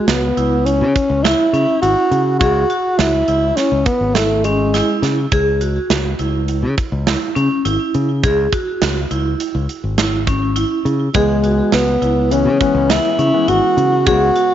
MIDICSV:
0, 0, Header, 1, 6, 480
1, 0, Start_track
1, 0, Key_signature, 4, "minor"
1, 0, Tempo, 582524
1, 1985, Time_signature, 5, 2, 24, 8
1, 11984, End_track
2, 0, Start_track
2, 0, Title_t, "Vibraphone"
2, 0, Program_c, 0, 11
2, 0, Note_on_c, 0, 66, 64
2, 180, Note_off_c, 0, 66, 0
2, 309, Note_on_c, 0, 64, 66
2, 661, Note_off_c, 0, 64, 0
2, 1026, Note_on_c, 0, 64, 76
2, 1202, Note_off_c, 0, 64, 0
2, 1266, Note_on_c, 0, 61, 52
2, 1443, Note_off_c, 0, 61, 0
2, 1503, Note_on_c, 0, 64, 63
2, 1857, Note_off_c, 0, 64, 0
2, 1985, Note_on_c, 0, 68, 75
2, 2162, Note_off_c, 0, 68, 0
2, 2226, Note_on_c, 0, 66, 68
2, 2579, Note_off_c, 0, 66, 0
2, 2707, Note_on_c, 0, 64, 63
2, 3059, Note_off_c, 0, 64, 0
2, 3424, Note_on_c, 0, 64, 72
2, 3601, Note_off_c, 0, 64, 0
2, 3667, Note_on_c, 0, 61, 57
2, 3842, Note_off_c, 0, 61, 0
2, 3908, Note_on_c, 0, 64, 74
2, 4260, Note_off_c, 0, 64, 0
2, 4386, Note_on_c, 0, 68, 84
2, 4562, Note_off_c, 0, 68, 0
2, 4623, Note_on_c, 0, 66, 61
2, 4976, Note_off_c, 0, 66, 0
2, 5104, Note_on_c, 0, 64, 61
2, 5457, Note_off_c, 0, 64, 0
2, 5824, Note_on_c, 0, 64, 64
2, 6001, Note_off_c, 0, 64, 0
2, 6061, Note_on_c, 0, 61, 64
2, 6239, Note_off_c, 0, 61, 0
2, 6305, Note_on_c, 0, 64, 66
2, 6658, Note_off_c, 0, 64, 0
2, 6788, Note_on_c, 0, 68, 83
2, 6963, Note_off_c, 0, 68, 0
2, 7026, Note_on_c, 0, 66, 60
2, 7379, Note_off_c, 0, 66, 0
2, 7505, Note_on_c, 0, 64, 68
2, 7858, Note_off_c, 0, 64, 0
2, 8226, Note_on_c, 0, 64, 73
2, 8402, Note_off_c, 0, 64, 0
2, 8463, Note_on_c, 0, 61, 60
2, 8641, Note_off_c, 0, 61, 0
2, 8701, Note_on_c, 0, 64, 68
2, 9056, Note_off_c, 0, 64, 0
2, 9185, Note_on_c, 0, 68, 84
2, 9362, Note_off_c, 0, 68, 0
2, 9425, Note_on_c, 0, 66, 62
2, 9779, Note_off_c, 0, 66, 0
2, 9904, Note_on_c, 0, 64, 63
2, 10259, Note_off_c, 0, 64, 0
2, 10627, Note_on_c, 0, 64, 73
2, 10804, Note_off_c, 0, 64, 0
2, 10867, Note_on_c, 0, 61, 57
2, 11044, Note_off_c, 0, 61, 0
2, 11109, Note_on_c, 0, 64, 72
2, 11462, Note_off_c, 0, 64, 0
2, 11588, Note_on_c, 0, 68, 85
2, 11765, Note_off_c, 0, 68, 0
2, 11829, Note_on_c, 0, 66, 67
2, 11984, Note_off_c, 0, 66, 0
2, 11984, End_track
3, 0, Start_track
3, 0, Title_t, "Tenor saxophone"
3, 0, Program_c, 1, 66
3, 66, Note_on_c, 1, 59, 80
3, 538, Note_on_c, 1, 61, 89
3, 551, Note_off_c, 1, 59, 0
3, 1016, Note_on_c, 1, 64, 80
3, 1028, Note_off_c, 1, 61, 0
3, 1491, Note_off_c, 1, 64, 0
3, 1496, Note_on_c, 1, 66, 85
3, 1947, Note_off_c, 1, 66, 0
3, 1972, Note_on_c, 1, 66, 81
3, 2456, Note_on_c, 1, 64, 90
3, 2469, Note_off_c, 1, 66, 0
3, 2938, Note_on_c, 1, 61, 84
3, 2951, Note_off_c, 1, 64, 0
3, 3178, Note_on_c, 1, 59, 75
3, 3191, Note_off_c, 1, 61, 0
3, 3414, Note_on_c, 1, 57, 79
3, 3427, Note_off_c, 1, 59, 0
3, 3665, Note_on_c, 1, 56, 68
3, 3677, Note_off_c, 1, 57, 0
3, 4144, Note_off_c, 1, 56, 0
3, 9182, Note_on_c, 1, 56, 74
3, 9631, Note_off_c, 1, 56, 0
3, 9670, Note_on_c, 1, 59, 78
3, 10150, Note_on_c, 1, 61, 88
3, 10162, Note_off_c, 1, 59, 0
3, 10634, Note_on_c, 1, 64, 90
3, 10646, Note_off_c, 1, 61, 0
3, 11115, Note_on_c, 1, 66, 95
3, 11127, Note_off_c, 1, 64, 0
3, 11592, Note_off_c, 1, 66, 0
3, 11597, Note_on_c, 1, 66, 96
3, 11984, Note_off_c, 1, 66, 0
3, 11984, End_track
4, 0, Start_track
4, 0, Title_t, "Grand piano"
4, 0, Program_c, 2, 0
4, 9184, Note_on_c, 2, 52, 52
4, 9185, Note_on_c, 2, 56, 51
4, 9190, Note_on_c, 2, 59, 62
4, 9965, Note_off_c, 2, 52, 0
4, 9965, Note_off_c, 2, 56, 0
4, 9968, Note_off_c, 2, 59, 0
4, 10144, Note_on_c, 2, 52, 62
4, 10147, Note_on_c, 2, 56, 51
4, 10148, Note_on_c, 2, 59, 70
4, 10340, Note_off_c, 2, 52, 0
4, 10342, Note_off_c, 2, 56, 0
4, 10342, Note_off_c, 2, 59, 0
4, 10386, Note_on_c, 2, 52, 61
4, 10386, Note_on_c, 2, 56, 61
4, 10393, Note_on_c, 2, 59, 75
4, 10874, Note_off_c, 2, 52, 0
4, 10874, Note_off_c, 2, 56, 0
4, 10877, Note_off_c, 2, 59, 0
4, 10988, Note_on_c, 2, 52, 61
4, 10989, Note_on_c, 2, 56, 58
4, 10993, Note_on_c, 2, 59, 67
4, 11475, Note_off_c, 2, 52, 0
4, 11476, Note_off_c, 2, 56, 0
4, 11478, Note_off_c, 2, 59, 0
4, 11593, Note_on_c, 2, 49, 57
4, 11598, Note_on_c, 2, 56, 54
4, 11599, Note_on_c, 2, 59, 63
4, 11984, Note_off_c, 2, 49, 0
4, 11984, Note_off_c, 2, 56, 0
4, 11984, Note_off_c, 2, 59, 0
4, 11984, End_track
5, 0, Start_track
5, 0, Title_t, "Fingered electric bass"
5, 0, Program_c, 3, 33
5, 63, Note_on_c, 3, 37, 84
5, 251, Note_off_c, 3, 37, 0
5, 305, Note_on_c, 3, 37, 65
5, 668, Note_on_c, 3, 49, 74
5, 681, Note_off_c, 3, 37, 0
5, 761, Note_off_c, 3, 49, 0
5, 905, Note_on_c, 3, 37, 78
5, 1092, Note_off_c, 3, 37, 0
5, 1262, Note_on_c, 3, 49, 63
5, 1357, Note_off_c, 3, 49, 0
5, 1504, Note_on_c, 3, 32, 66
5, 1598, Note_off_c, 3, 32, 0
5, 1741, Note_on_c, 3, 49, 79
5, 1983, Note_on_c, 3, 37, 84
5, 1995, Note_off_c, 3, 49, 0
5, 2170, Note_off_c, 3, 37, 0
5, 2464, Note_on_c, 3, 37, 86
5, 2651, Note_off_c, 3, 37, 0
5, 2703, Note_on_c, 3, 37, 75
5, 2891, Note_off_c, 3, 37, 0
5, 3063, Note_on_c, 3, 37, 79
5, 3157, Note_off_c, 3, 37, 0
5, 3302, Note_on_c, 3, 32, 67
5, 3956, Note_off_c, 3, 32, 0
5, 4140, Note_on_c, 3, 49, 80
5, 4328, Note_off_c, 3, 49, 0
5, 4383, Note_on_c, 3, 37, 72
5, 4757, Note_off_c, 3, 37, 0
5, 4862, Note_on_c, 3, 37, 84
5, 5049, Note_off_c, 3, 37, 0
5, 5103, Note_on_c, 3, 37, 61
5, 5462, Note_on_c, 3, 49, 74
5, 5474, Note_off_c, 3, 37, 0
5, 5556, Note_off_c, 3, 49, 0
5, 5703, Note_on_c, 3, 37, 80
5, 5890, Note_off_c, 3, 37, 0
5, 6065, Note_on_c, 3, 49, 65
5, 6158, Note_off_c, 3, 49, 0
5, 6307, Note_on_c, 3, 32, 69
5, 6399, Note_off_c, 3, 32, 0
5, 6548, Note_on_c, 3, 49, 80
5, 6785, Note_on_c, 3, 37, 81
5, 6797, Note_off_c, 3, 49, 0
5, 6971, Note_off_c, 3, 37, 0
5, 7266, Note_on_c, 3, 37, 87
5, 7452, Note_off_c, 3, 37, 0
5, 7504, Note_on_c, 3, 37, 67
5, 7691, Note_off_c, 3, 37, 0
5, 7867, Note_on_c, 3, 37, 72
5, 7959, Note_off_c, 3, 37, 0
5, 8106, Note_on_c, 3, 32, 70
5, 8760, Note_off_c, 3, 32, 0
5, 8943, Note_on_c, 3, 49, 77
5, 9131, Note_off_c, 3, 49, 0
5, 9185, Note_on_c, 3, 37, 74
5, 9559, Note_off_c, 3, 37, 0
5, 9665, Note_on_c, 3, 37, 84
5, 9852, Note_off_c, 3, 37, 0
5, 9904, Note_on_c, 3, 37, 64
5, 10261, Note_on_c, 3, 49, 71
5, 10273, Note_off_c, 3, 37, 0
5, 10357, Note_off_c, 3, 49, 0
5, 10502, Note_on_c, 3, 37, 84
5, 10691, Note_off_c, 3, 37, 0
5, 10865, Note_on_c, 3, 49, 73
5, 10959, Note_off_c, 3, 49, 0
5, 11108, Note_on_c, 3, 32, 68
5, 11201, Note_off_c, 3, 32, 0
5, 11348, Note_on_c, 3, 49, 80
5, 11591, Note_on_c, 3, 37, 91
5, 11604, Note_off_c, 3, 49, 0
5, 11777, Note_off_c, 3, 37, 0
5, 11984, End_track
6, 0, Start_track
6, 0, Title_t, "Drums"
6, 65, Note_on_c, 9, 38, 92
6, 65, Note_on_c, 9, 42, 67
6, 147, Note_off_c, 9, 38, 0
6, 147, Note_off_c, 9, 42, 0
6, 308, Note_on_c, 9, 42, 54
6, 390, Note_off_c, 9, 42, 0
6, 547, Note_on_c, 9, 42, 66
6, 630, Note_off_c, 9, 42, 0
6, 788, Note_on_c, 9, 36, 63
6, 792, Note_on_c, 9, 42, 47
6, 870, Note_off_c, 9, 36, 0
6, 875, Note_off_c, 9, 42, 0
6, 1030, Note_on_c, 9, 38, 95
6, 1030, Note_on_c, 9, 42, 68
6, 1112, Note_off_c, 9, 38, 0
6, 1112, Note_off_c, 9, 42, 0
6, 1267, Note_on_c, 9, 42, 51
6, 1350, Note_off_c, 9, 42, 0
6, 1507, Note_on_c, 9, 42, 69
6, 1589, Note_off_c, 9, 42, 0
6, 1744, Note_on_c, 9, 42, 45
6, 1826, Note_off_c, 9, 42, 0
6, 1982, Note_on_c, 9, 42, 63
6, 1985, Note_on_c, 9, 36, 96
6, 2065, Note_off_c, 9, 42, 0
6, 2067, Note_off_c, 9, 36, 0
6, 2223, Note_on_c, 9, 42, 47
6, 2306, Note_off_c, 9, 42, 0
6, 2462, Note_on_c, 9, 38, 79
6, 2462, Note_on_c, 9, 42, 70
6, 2545, Note_off_c, 9, 38, 0
6, 2545, Note_off_c, 9, 42, 0
6, 2701, Note_on_c, 9, 42, 51
6, 2783, Note_off_c, 9, 42, 0
6, 2942, Note_on_c, 9, 38, 26
6, 2942, Note_on_c, 9, 42, 74
6, 3024, Note_off_c, 9, 38, 0
6, 3024, Note_off_c, 9, 42, 0
6, 3178, Note_on_c, 9, 42, 52
6, 3182, Note_on_c, 9, 36, 69
6, 3261, Note_off_c, 9, 42, 0
6, 3264, Note_off_c, 9, 36, 0
6, 3420, Note_on_c, 9, 38, 86
6, 3420, Note_on_c, 9, 42, 70
6, 3502, Note_off_c, 9, 38, 0
6, 3502, Note_off_c, 9, 42, 0
6, 3661, Note_on_c, 9, 42, 56
6, 3743, Note_off_c, 9, 42, 0
6, 3906, Note_on_c, 9, 38, 30
6, 3906, Note_on_c, 9, 42, 74
6, 3988, Note_off_c, 9, 38, 0
6, 3988, Note_off_c, 9, 42, 0
6, 4145, Note_on_c, 9, 38, 27
6, 4145, Note_on_c, 9, 42, 49
6, 4228, Note_off_c, 9, 38, 0
6, 4228, Note_off_c, 9, 42, 0
6, 4381, Note_on_c, 9, 42, 69
6, 4383, Note_on_c, 9, 36, 97
6, 4464, Note_off_c, 9, 42, 0
6, 4466, Note_off_c, 9, 36, 0
6, 4622, Note_on_c, 9, 42, 55
6, 4705, Note_off_c, 9, 42, 0
6, 4863, Note_on_c, 9, 38, 90
6, 4863, Note_on_c, 9, 42, 64
6, 4945, Note_off_c, 9, 38, 0
6, 4945, Note_off_c, 9, 42, 0
6, 5101, Note_on_c, 9, 42, 53
6, 5183, Note_off_c, 9, 42, 0
6, 5342, Note_on_c, 9, 42, 65
6, 5424, Note_off_c, 9, 42, 0
6, 5584, Note_on_c, 9, 42, 53
6, 5585, Note_on_c, 9, 36, 64
6, 5666, Note_off_c, 9, 42, 0
6, 5668, Note_off_c, 9, 36, 0
6, 5825, Note_on_c, 9, 38, 92
6, 5825, Note_on_c, 9, 42, 62
6, 5908, Note_off_c, 9, 38, 0
6, 5908, Note_off_c, 9, 42, 0
6, 6067, Note_on_c, 9, 42, 53
6, 6149, Note_off_c, 9, 42, 0
6, 6307, Note_on_c, 9, 42, 68
6, 6389, Note_off_c, 9, 42, 0
6, 6546, Note_on_c, 9, 42, 49
6, 6629, Note_off_c, 9, 42, 0
6, 6786, Note_on_c, 9, 36, 93
6, 6786, Note_on_c, 9, 42, 71
6, 6868, Note_off_c, 9, 36, 0
6, 6868, Note_off_c, 9, 42, 0
6, 7024, Note_on_c, 9, 42, 52
6, 7025, Note_on_c, 9, 36, 61
6, 7106, Note_off_c, 9, 42, 0
6, 7107, Note_off_c, 9, 36, 0
6, 7265, Note_on_c, 9, 38, 90
6, 7265, Note_on_c, 9, 42, 67
6, 7348, Note_off_c, 9, 38, 0
6, 7348, Note_off_c, 9, 42, 0
6, 7507, Note_on_c, 9, 42, 58
6, 7589, Note_off_c, 9, 42, 0
6, 7747, Note_on_c, 9, 42, 80
6, 7829, Note_off_c, 9, 42, 0
6, 7986, Note_on_c, 9, 42, 53
6, 8069, Note_off_c, 9, 42, 0
6, 8223, Note_on_c, 9, 38, 87
6, 8223, Note_on_c, 9, 42, 69
6, 8306, Note_off_c, 9, 38, 0
6, 8306, Note_off_c, 9, 42, 0
6, 8465, Note_on_c, 9, 36, 69
6, 8465, Note_on_c, 9, 42, 56
6, 8547, Note_off_c, 9, 36, 0
6, 8548, Note_off_c, 9, 42, 0
6, 8703, Note_on_c, 9, 42, 78
6, 8785, Note_off_c, 9, 42, 0
6, 8947, Note_on_c, 9, 42, 47
6, 9029, Note_off_c, 9, 42, 0
6, 9182, Note_on_c, 9, 42, 76
6, 9185, Note_on_c, 9, 36, 98
6, 9264, Note_off_c, 9, 42, 0
6, 9267, Note_off_c, 9, 36, 0
6, 9424, Note_on_c, 9, 42, 53
6, 9506, Note_off_c, 9, 42, 0
6, 9660, Note_on_c, 9, 38, 91
6, 9660, Note_on_c, 9, 42, 65
6, 9742, Note_off_c, 9, 38, 0
6, 9742, Note_off_c, 9, 42, 0
6, 9906, Note_on_c, 9, 42, 49
6, 9988, Note_off_c, 9, 42, 0
6, 10147, Note_on_c, 9, 42, 66
6, 10229, Note_off_c, 9, 42, 0
6, 10388, Note_on_c, 9, 36, 62
6, 10390, Note_on_c, 9, 42, 45
6, 10470, Note_off_c, 9, 36, 0
6, 10472, Note_off_c, 9, 42, 0
6, 10629, Note_on_c, 9, 38, 96
6, 10629, Note_on_c, 9, 42, 67
6, 10711, Note_off_c, 9, 38, 0
6, 10711, Note_off_c, 9, 42, 0
6, 10868, Note_on_c, 9, 42, 54
6, 10951, Note_off_c, 9, 42, 0
6, 11109, Note_on_c, 9, 42, 65
6, 11191, Note_off_c, 9, 42, 0
6, 11353, Note_on_c, 9, 42, 55
6, 11435, Note_off_c, 9, 42, 0
6, 11591, Note_on_c, 9, 36, 97
6, 11592, Note_on_c, 9, 42, 71
6, 11673, Note_off_c, 9, 36, 0
6, 11674, Note_off_c, 9, 42, 0
6, 11829, Note_on_c, 9, 42, 58
6, 11911, Note_off_c, 9, 42, 0
6, 11984, End_track
0, 0, End_of_file